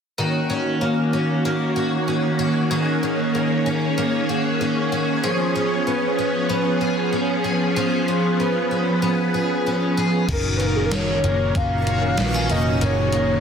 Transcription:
0.18 D#3 A#3 C#4 F#4 C#5
0.50 C#4
0.81 A#3
1.13 C#4
1.45 A#3
1.76 F#4
2.08 C#4
2.39 F#4
2.70 D#3 F#4 G#4
3.03 C#4
3.35 A#3
3.66 C#4
3.98 A#3
4.29 F#4
4.61 C#4
4.92 F#4
5.23 F3 B3 G#4
5.55 C#4
5.87 B3
6.19 C#4
6.49 B3
6.81 G#4
7.13 C#4
7.44 G#4
7.76 F3 G#4 B4
8.08 C#4
8.40 B3
8.71 C#4
9.02 B3
9.34 G#4
9.67 C#4
9.97 G#4
10.28 F#1 A#2 D#3 C#4 F#4 A#4, kick, closed hi-hat, crash
10.32 A#4
10.57 A#3 B4, closed hi-hat
10.66 A#4
10.76 G#4
10.86 A#4
10.91 C#4 C#5, snare, closed hi-hat
11.24 F#1 A#3, closed hi-hat
11.55 F#1 C#4 F5, kick, closed hi-hat
11.87 F#4, closed hi-hat
12.17 A#1 B3, snare, closed hi-hat
12.34 C#4
12.50 F1 A#3 D#5, closed hi-hat
12.81 F#1 D#3 G#4 C#5, closed hi-hat
13.13 A#3, closed hi-hat

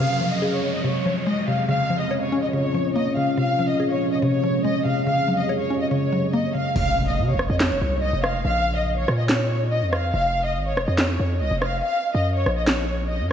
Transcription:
0.00 F2 C3 G#3 F5, downlifter
0.07 closed hi-hat
0.14 closed hi-hat
0.21 F3
0.32 D#5
0.42 G#4
0.53 C#5
0.74 D#5
0.84 C3 C#5
1.06 F3
1.26 G#3 D#5
1.48 C3 F5
1.69 A#2 C#3 F3 C#4 F5
1.90 F3
2.00 D#5
2.11 C#5
2.21 C#5
2.32 C#4
2.42 D#5
2.53 C#3 C#5
2.74 F3
2.95 A#3 D#5
3.16 C#3 F5
3.38 F2 C3 G#3 F5
3.59 F3
3.69 D#5
3.80 G#4
3.90 C#5
4.11 D#5
4.22 C3 C#5
4.43 F3
4.65 G#3 D#5
4.85 C3 F5
5.06 F#2 C#3 A#3 F5
5.28 F#3
5.38 D#5
5.49 C#5
5.59 C#5
5.70 C#4
5.81 D#5
5.91 C#3 C#5
6.12 F#3
6.33 A#3 D#5
6.55 C#3 F5
6.76 F1 F5, crash, impact
7.08 D#5
7.18 C3
7.29 C#5
7.34 F1
7.39 cross-stick
7.50 F2 D#5
7.60 C#5, snare, clap
7.71 D#1
7.81 C2
8.02 D#5
8.13 F1
8.24 F5, cross-stick
8.45 A#1 F5
8.76 D#5
8.98 C#5
9.08 A#2, cross-stick
9.19 D#5
9.29 C#5, snare, clap
9.72 D#5
9.82 F2
9.93 F5, cross-stick
10.14 F1 F5
10.45 D#5
10.56 G#1
10.67 C#5
10.72 F1
10.77 cross-stick
10.87 F2 D#5
10.98 C#5, snare, clap
11.19 F2
11.41 C2 D#5
11.51 F1
11.62 F5, cross-stick
11.82 F5
12.15 F#2 D#5
12.35 C#5
12.46 A#1, cross-stick
12.57 D#5
12.67 C#5, snare, clap
13.09 D#5
13.20 F#2

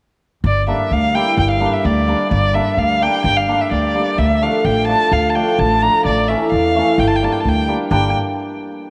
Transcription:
0.44 G1 D5
0.67 G3 A#3 D4 E5
0.91 D2 F5
1.14 G3 A#3 E4 G5
1.37 G1 G5
1.51 F5
1.60 G3 A#3 D4
1.73 E5
1.85 D2 D5
2.07 G3 A#3 D4
2.31 G1 D5
2.53 G3 A#3 D4 E5
2.77 D2 F5
3.01 G3 A#3 D4 G5
3.24 G1 G5
3.37 F5
3.47 G3 A#3 D4
3.61 E5
3.71 D2 D5
3.94 G3 A#3 D4
4.18 D2 E5
4.41 F3 A3 D4 F5
4.65 A1 G5
4.87 F3 A3 D4 A5
5.12 D2 F5
5.30 A5
5.35 F3 A3 D4 G5
5.59 A1 A5
5.82 F3 A3 D4 A#5
6.05 A1 D5
6.28 E3 A3 C#4 E5
6.52 E2 F5
6.75 E3 A3 C#4
6.98 G1 G5
7.07 A5
7.16 G5
7.22 G3 A#3 D4 A5
7.32 G5
7.40 A5
7.45 D2 G5
7.68 G3 A#3 D4
7.91 G1 G3 A#3 D4 G5

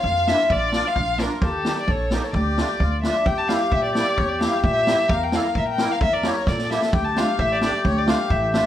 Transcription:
Already playing: F4 F5
0.03 F2, kick
0.27 A#3 D4 E4 E5, snare
0.50 A#1 D5, kick
0.72 A#3 D4 F4, snare
0.87 F5
0.96 A#1, kick
1.18 A#3 D4 F4 A#4, snare
1.35 A#4
1.41 D#2 G4 A4, kick
1.65 A#3 D#4 G4, snare
1.80 D5
1.87 A#1 A4 C#5, kick
2.11 A#3 D#4 G4 A#4, snare
2.24 C#5
2.33 D2 G4 D5, kick
2.58 A3 D4 F4, snare
2.80 D2 F4, kick
3.03 A3 D4 F4 E5, snare
3.26 E2 G4 G5, kick
3.38 A5
3.48 A#3 E4 G4 F5, snare
3.71 A#2 E5, kick
3.84 D5
3.95 A#3 E4 G4 D5, snare
4.18 E2 C#5, kick
4.29 D5
4.41 A#3 E4 G4 F5, snare
4.63 A#2 E5, kick
4.87 A#3 E4 G4, snare
5.09 E2 A#4 F5, kick
5.23 G5
5.32 A#3 E4 A4 F5, snare
5.55 A#2 E5, kick
5.68 G5
5.78 A#3 E4 A#4, snare
5.92 F5
6.01 E2 E5, kick
6.13 D5
6.22 A#3 E4 G4 C#5, snare
6.47 A#2 A4 D5, kick, snare
6.58 snare
6.70 A#3 E4 G4 E5, snare
6.82 snare
6.92 D2 G4 G5, kick
7.05 A5
7.16 A3 D4 F4 F5, snare
7.39 A1 E5, kick
7.51 D5 E5
7.57 A3 D5
7.61 D4 G4 D5, snare
7.84 D2 C#5, kick
7.98 D5
8.06 A3 D4 F4 F5, snare
8.30 A1 E5, kick
8.53 A3 D4 F4 E5, snare

